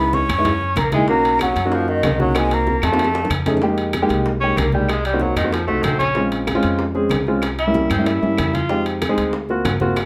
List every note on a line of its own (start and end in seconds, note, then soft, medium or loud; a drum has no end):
0.00 0.24 C#2 medium
0.00 0.22 G#3 medium
0.00 0.16 B3 medium
0.00 0.22 B3 medium
0.00 0.22 D#4 medium
0.00 0.22 E4 medium
0.00 0.15 B5 loud
0.13 0.80 C#4 medium
0.13 0.80 C#6 loud
0.13 high bongo medium
0.13 high conga medium
0.29 0.74 F#2 medium
0.29 high bongo soft
0.29 high conga soft
0.29 low conga medium
0.29 high timbale medium
0.29 claves medium
0.38 0.46 G#3 medium
0.38 0.46 B3 medium
0.38 0.46 D#4 medium
0.38 0.46 E4 medium
0.45 high bongo medium
0.45 high conga soft
0.45 low conga medium
0.45 high timbale medium
0.61 high bongo soft
0.61 high conga soft
0.76 1.51 B1 medium
0.76 0.93 A#3 medium
0.76 0.94 A#5 medium
0.76 high bongo soft
0.76 low bongo medium
0.76 high conga medium
0.76 high timbale medium
0.76 claves medium
0.92 1.04 G#3 medium
0.92 1.08 G#3 medium
0.92 1.05 A#3 medium
0.92 1.05 D#4 medium
0.92 1.04 E4 medium
0.92 1.09 G#5 medium
0.92 high bongo soft
0.92 high conga medium
0.92 high timbale medium
1.08 1.48 A#3 medium
1.08 1.39 A#3 medium
1.08 1.48 C#4 medium
1.08 1.48 D#4 medium
1.08 1.48 F#4 medium
1.08 1.39 A#5 loud
1.08 high bongo medium
1.08 high conga soft
1.24 high conga soft
1.24 high timbale medium
1.39 1.75 F#3 medium
1.39 1.77 F#5 medium
1.39 high bongo medium
1.39 high conga medium
1.39 high timbale medium
1.39 claves medium
1.56 2.00 F#2 loud
1.56 high bongo soft
1.56 high timbale medium
1.65 2.04 A#3 medium
1.65 2.04 C#4 medium
1.65 2.04 D#4 medium
1.65 2.04 F#4 medium
1.72 1.90 F3 medium
1.72 1.93 F5 medium
1.72 high bongo medium
1.72 high conga soft
1.88 2.20 D#3 medium
1.88 2.21 D#5 medium
1.88 high bongo soft
1.88 high conga soft
2.03 2.77 C2 medium
2.03 high bongo soft
2.03 low bongo medium
2.03 high conga medium
2.03 high timbale medium
2.03 low timbale medium
2.03 claves medium
2.19 2.39 F#3 medium
2.19 2.31 A#3 medium
2.19 2.31 C#4 medium
2.19 2.31 D#4 medium
2.19 2.31 F#4 medium
2.19 2.39 F#5 medium
2.19 high bongo soft
2.19 high conga medium
2.35 2.55 G#3 medium
2.35 2.74 A#3 medium
2.35 2.74 C4 medium
2.35 2.74 D#4 medium
2.35 2.74 F#4 medium
2.35 2.55 G#5 loud
2.35 high bongo medium
2.35 high timbale medium
2.35 claves medium
2.51 2.85 A#3 medium
2.51 2.87 A#5 loud
2.51 high conga soft
2.51 high timbale medium
2.67 high bongo medium
2.67 high conga medium
2.82 3.27 F2 medium
2.82 3.31 A3 medium
2.82 3.32 A5 medium
2.82 high bongo medium
2.82 high conga soft
2.82 low conga medium
2.82 high timbale medium
2.82 claves medium
2.92 2.99 A#3 medium
2.92 2.99 C4 medium
2.92 3.00 D#4 medium
2.92 3.00 F#4 medium
2.92 high bongo medium
2.99 high conga soft
2.99 high timbale medium
3.04 high bongo medium
3.14 high bongo medium
3.14 high conga soft
3.25 low bongo medium
3.30 4.04 F2 medium
3.30 high conga medium
3.30 high timbale loud
3.30 claves medium
3.46 3.58 A3 medium
3.46 3.58 C#4 medium
3.46 3.58 D#4 medium
3.46 3.58 G#4 medium
3.46 low bongo medium
3.46 high conga medium
3.46 high timbale medium
3.57 low bongo medium
3.62 3.90 G#3 medium
3.62 3.90 A#3 medium
3.62 3.90 D#4 medium
3.62 3.91 G4 loud
3.62 high bongo medium
3.62 high conga soft
3.78 high conga soft
3.78 high timbale medium
3.93 high bongo medium
3.93 high conga medium
3.93 high timbale medium
3.93 claves medium
4.02 4.30 G#3 medium
4.02 4.30 A#3 medium
4.02 4.30 D#4 medium
4.02 4.30 G4 loud
4.09 4.54 C2 medium
4.09 high bongo soft
4.09 high timbale medium
4.26 high bongo medium
4.41 4.65 G#3 medium
4.41 4.65 A#3 medium
4.41 4.58 C#4 medium
4.41 4.65 D#4 medium
4.41 4.65 G4 medium
4.41 high bongo soft
4.41 high conga soft
4.57 5.31 C2 medium
4.57 4.73 A#3 medium
4.57 high bongo soft
4.57 low bongo medium
4.57 high conga medium
4.57 high timbale medium
4.57 claves medium
4.72 4.91 G3 medium
4.72 4.90 G#3 medium
4.72 4.90 A#3 medium
4.72 4.90 D#4 medium
4.72 4.90 G4 medium
4.72 high bongo soft
4.72 high conga medium
4.89 5.05 G#3 medium
4.89 high bongo medium
4.89 high timbale medium
4.89 claves medium
5.04 5.23 G3 medium
5.04 high conga soft
5.04 high timbale medium
5.13 5.35 A#3 medium
5.13 5.35 C4 medium
5.13 5.35 D#4 medium
5.13 5.35 F#4 medium
5.20 5.36 F#3 medium
5.20 high bongo medium
5.20 high conga medium
5.36 5.66 F2 medium
5.36 5.54 D#3 medium
5.36 high bongo soft
5.36 high conga soft
5.36 low conga medium
5.36 high timbale medium
5.36 claves medium
5.44 5.53 A#3 medium
5.44 5.53 C4 medium
5.44 5.53 D#4 medium
5.44 5.52 F#4 medium
5.52 5.66 F3 medium
5.52 high bongo medium
5.52 high conga soft
5.52 high timbale medium
5.67 5.83 C2 medium
5.67 5.84 A3 medium
5.67 6.01 A3 medium
5.67 6.01 C4 medium
5.67 6.02 D#4 medium
5.67 6.02 F#4 medium
5.67 high bongo soft
5.67 high conga soft
5.83 6.58 A#1 medium
5.83 5.98 C4 medium
5.83 high bongo soft
5.83 low bongo medium
5.83 high conga medium
5.83 high timbale medium
5.83 claves medium
5.99 6.29 C#4 loud
5.99 high bongo soft
5.99 high conga medium
5.99 high timbale medium
6.15 6.44 G#3 medium
6.15 6.44 C4 medium
6.15 6.44 C#4 medium
6.15 6.44 F4 medium
6.15 high bongo medium
6.15 high conga soft
6.32 high conga soft
6.32 high timbale medium
6.47 high bongo medium
6.47 high conga medium
6.47 high timbale medium
6.47 claves medium
6.55 6.83 G#3 loud
6.55 6.83 C4 medium
6.55 6.83 C#4 medium
6.55 6.83 F4 loud
6.63 7.08 F2 medium
6.63 high bongo soft
6.63 high timbale medium
6.79 high bongo medium
6.79 high conga soft
6.95 7.17 G#3 medium
6.95 7.17 C4 medium
6.95 7.17 C#4 medium
6.95 7.18 G#4 medium
6.95 high bongo soft
6.95 high conga soft
7.10 7.85 C2 medium
7.10 high bongo soft
7.10 low bongo medium
7.10 high conga medium
7.10 high timbale medium
7.10 claves medium
7.27 7.44 G#3 medium
7.27 7.43 C4 medium
7.27 7.43 C#4 medium
7.27 7.43 F4 medium
7.27 high bongo soft
7.42 high bongo medium
7.42 high conga soft
7.42 high timbale medium
7.42 claves medium
7.59 7.89 E4 medium
7.59 high conga soft
7.59 high timbale medium
7.67 7.89 G3 medium
7.67 7.89 A#3 medium
7.67 7.89 C#4 medium
7.67 7.89 E4 medium
7.74 high bongo medium
7.74 high conga medium
7.90 8.20 G2 medium
7.90 8.08 C4 medium
7.90 high bongo soft
7.90 high conga soft
7.90 low conga medium
7.90 high timbale loud
7.90 claves medium
7.98 8.15 G3 medium
7.98 8.15 A#3 medium
7.98 8.15 C#4 medium
7.98 8.15 E4 medium
8.06 8.55 E4 medium
8.06 high bongo medium
8.06 high conga soft
8.06 high timbale medium
8.22 8.37 G2 medium
8.22 8.55 G3 medium
8.22 8.55 A#3 medium
8.22 8.56 C#4 medium
8.22 8.55 E4 medium
8.22 high bongo soft
8.22 high conga soft
8.38 9.12 F2 medium
8.38 high bongo soft
8.38 low bongo medium
8.38 high conga medium
8.38 high timbale loud
8.38 claves medium
8.54 8.86 F4 medium
8.54 high bongo soft
8.54 high conga medium
8.54 high timbale medium
8.69 8.98 G#3 medium
8.69 8.98 C4 medium
8.69 8.98 D#4 medium
8.69 8.98 G4 medium
8.69 high bongo medium
8.69 high conga soft
8.86 high conga soft
8.86 high timbale medium
9.02 high bongo medium
9.02 high conga medium
9.02 high timbale medium
9.02 claves medium
9.09 9.33 G#3 medium
9.09 9.33 C4 medium
9.09 9.33 D#4 medium
9.09 9.33 G#4 loud
9.18 9.62 D2 medium
9.18 high bongo soft
9.18 high timbale medium
9.33 high bongo medium
9.33 high conga soft
9.49 9.72 A#3 medium
9.49 9.72 C4 medium
9.49 9.72 F4 medium
9.49 9.72 F#4 medium
9.49 high bongo soft
9.49 high conga soft
9.65 10.05 G1 medium
9.65 high bongo soft
9.65 low bongo medium
9.65 high conga medium
9.65 high timbale medium
9.65 claves medium
9.80 9.97 A#3 medium
9.80 9.97 C4 medium
9.80 9.97 F4 medium
9.80 9.97 F#4 loud
9.80 high bongo soft
9.80 high conga medium
9.96 high bongo medium
9.96 high conga soft
9.96 high timbale medium
9.96 claves medium